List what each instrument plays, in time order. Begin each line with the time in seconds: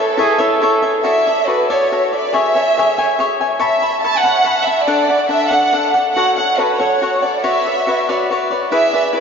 Already playing: violin section A4, cavaquinho C#5 E5
0.00 cavaquinho A4
0.17 cavaquinho E4 A4 C#5 E5, trumpet G#4
0.38 cavaquinho E4 A4 C#5 E5, trumpet A4
0.62 cavaquinho E4 A4 C#5 E5
0.82 cavaquinho A4 C#5 E5
1.04 cavaquinho F#4 A4 D5 E5, violin section E5
1.27 cavaquinho A4 D5 E5
1.48 cavaquinho F#4 A4 D5 E5, violin section B4
1.70 cavaquinho F#4 A4 D5 E5, violin section C#5
1.92 cavaquinho F#4 A4 D5 E5
2.12 cavaquinho A4 D5 E5, violin section D5
2.33 cavaquinho G#4 C#5 E5 G#5, violin section E5
2.55 cavaquinho C#5 E5 G#5
2.77 cavaquinho G#4 C#5 E5 G#5
2.98 cavaquinho G#4 C#5 E5 G#5
3.19 cavaquinho G#4 C#5 E5 G#5
3.41 cavaquinho C#5 E5 G#5
3.59 cavaquinho C#5 E5 A5 B5, violin section E5
3.82 cavaquinho E5 A5 B5
4.02 cavaquinho C#5 E5 A5 B5, violin section A5
4.20 violin section F#5, cavaquinho B5
4.24 cavaquinho C#5 E5 A5
4.44 cavaquinho C#5 E5 A5 B5
4.63 violin section E5, cavaquinho A5 B5
4.67 cavaquinho E5
4.84 cavaquinho D4 A4 D5 F#5, violin section D5
5.10 cavaquinho A4 D5 F#5
5.29 cavaquinho D4 A4 D5 F#5, violin section E5
5.49 cavaquinho D4 A4 D5 F#5, violin section F#5
5.72 cavaquinho D4 A4 D5 F#5
5.94 cavaquinho A4 D5 F#5
6.14 cavaquinho F#4 A4 C#5 F#5, violin section F#5
6.37 cavaquinho A4 C#5 F#5, violin section F#5
6.58 cavaquinho F#4 A4 C#5 F#5, violin section B4
6.78 cavaquinho F#4 A4 C#5 F#5, violin section C#5
7.02 cavaquinho F#4 A4 C#5 F#5
7.22 cavaquinho A4 C#5 F#5, violin section D5
7.44 cavaquinho F#4 B4 C#5 D5, violin section E5
7.67 cavaquinho B4 C#5 D5
7.87 cavaquinho F#4 B4 C#5 D5
8.09 cavaquinho F#4 B4 C#5 D5
8.31 cavaquinho F#4 B4 C#5 D5
8.50 cavaquinho B4 C#5 D5
8.71 cavaquinho E4 G#4 B4 D5, violin section E5
8.93 cavaquinho G#4 B4 D5
9.13 cavaquinho E4 G#4 B4 D5, violin section B4